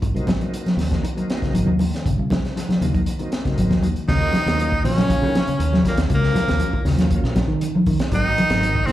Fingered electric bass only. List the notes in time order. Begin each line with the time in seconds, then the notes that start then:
0.02 G#1
0.14 C2
0.77 D#2
1.53 G#1
1.66 D#2
2.06 G#1
2.18 C2
2.81 D#2
3.57 G#1
3.70 D#2
4.08 D#2
4.46 D#2
4.83 A#1
5.22 D#3
5.48 muted fingered electric bass stroke
5.59 D#2
5.98 D#2
6.10 C#2
6.49 D#2
6.73 muted fingered electric bass stroke
6.85 D#2
7.24 A#1
7.48 D#3
7.87 D#3
7.99 muted fingered electric bass stroke
8.11 G#1
8.50 G#1
8.87 D#2